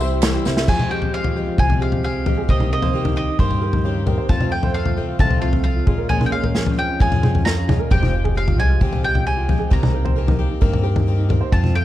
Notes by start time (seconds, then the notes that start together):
Already playing: C2 E3 G3 G4 E5
0.00 G3 C4 E4 C5, tambourine
0.12 G4
0.23 C3 E3 G3 C4 E4 C5, snare, clap, closed hi-hat, tambourine
0.34 G4
0.45 C2 G3 C4 E4 C5, snare, tambourine
0.57 E5, snare, tambourine
0.67 F2 C3 F3 G#3 C4 F4 G4 G#5, kick, floor tom, crash
0.79 F4 G4, mid tom
0.90 F3 G#3 C4 G4 G5
1.02 floor tom
1.13 F3 G#3 C4 G4 F5
1.24 F4, floor tom
1.36 C2 F3 G#3 C4 G4
1.47 F4
1.58 C2 F2 C3 F3 G#3 C4 G4 G#5, kick, floor tom
1.70 floor tom
1.80 F3 G#3 C4 G4 F5
1.92 F4, floor tom
2.03 F3 G#3 C4 G4 F5
2.15 F4
2.26 F3 G#3 C4 G4, floor tom
2.37 G#4
2.48 C2 C3 D#3 A#3 C4 G4 D#5, kick, floor tom
2.60 D#4, mid tom
2.71 G#3 A#3 C4 G4 A#4 D#5
2.82 A#3 C5, floor tom
2.93 D#3 A#3 C4 D#4 G4 A#4
3.05 D#4, floor tom
3.16 D#3 A#3 C4 G4 D#5
3.29 D#4
3.38 G2 C3 D#3 A#3 C4 G4 A#4 C5, kick, floor tom
3.51 floor tom
3.61 A#3 C4 G4 A#4
3.73 D#4, floor tom
3.84 C#3 D#3 A#3 C4 G4
3.96 D#4
4.06 D#3 A#3 C4 G4 A#4, floor tom
4.18 C5
4.29 F2 C3 F3 A3 C4 F4 A4 A5, kick, floor tom
4.41 F4, mid tom
4.51 F3 A3 C4 F4 A4 G5
4.63 C5, floor tom
4.74 F3 A3 C4 F4 A4 F5
4.86 F4, floor tom
4.96 C2 F3 A3 C4 F4
5.08 F4
5.19 C2 F2 C3 F3 A3 C4 F4 A4 A5, kick, floor tom
5.31 floor tom
5.41 F3 A3 C4 F4 A4 F5
5.53 F4, floor tom
5.64 F3 A3 C4 F4 F5
5.76 F4
5.86 A#1 A#2 G#3 C#4 F4 G#4, kick, floor tom
5.98 A#4
6.09 A#2 F3 G#3 A#3 C#4 F4 G#5, floor tom
6.20 C#4, mid tom
6.26 G5
6.32 G#3 C#4 F4 G#4 F5
6.42 A#4, floor tom
6.54 F3 G#3 C#4 F4 G#4, snare
6.66 C#4, floor tom
6.77 F2 G#3 C#4 F4 G5
6.88 C#4
7.00 F2 A#2 F3 G#3 C#4 F4 G#4 G#5, kick, floor tom
7.12 G#4, floor tom
7.22 G#3 C#4 F4 G#4, mid tom
7.34 C#4, floor tom
7.45 F3 G#3 C#4 F4 A#5, snare
7.57 C#4 G#4
7.67 A#2 G#3 C#4 F4 G#4, floor tom, mid tom
7.79 A#4
7.90 F1 F2 C3 F3 G#3 C4 G4 G5, kick, floor tom
8.02 F4, mid tom
8.13 F3 G#3 C4 G4
8.24 G#4, floor tom
8.35 F3 G#3 C4 G4 F5
8.47 F4, floor tom
8.58 C2 F3 G#3 C4 G4 G#5
8.70 F4
8.81 C2 F2 C3 F3 G#3 C4 G4, kick, floor tom
8.93 floor tom
9.03 F3 G#3 C4 G4 G5
9.15 F4, floor tom
9.26 F3 G#3 C4 G4 G#5
9.37 F4
9.48 F3 G#3 C4 G4, floor tom
9.59 G#4
9.70 C2 C3 D#3 A#3 C4 G4 A#5, kick, floor tom
9.81 D#4, mid tom
9.93 A#3 C4 G4 A#4
10.05 C5, floor tom
10.16 D#3 A#3 C4 G4 A#4
10.27 D#4, floor tom
10.39 A#3 C4 G4
10.49 D#4
10.61 G2 C3 D#3 A#3 C4 G4 A#4, kick, floor tom
10.73 floor tom
10.83 A#3 C4 G4 A#4
10.95 D#4, floor tom
11.07 D#3 A#3 C4 G4
11.18 D#4
11.29 A#3 C4 G4 A#4, floor tom
11.41 C5
11.52 F2 C3 F3 A3 C4 F4 A5, kick, floor tom
11.63 F4, mid tom
11.74 F3 A3 C4 F4 A4 G5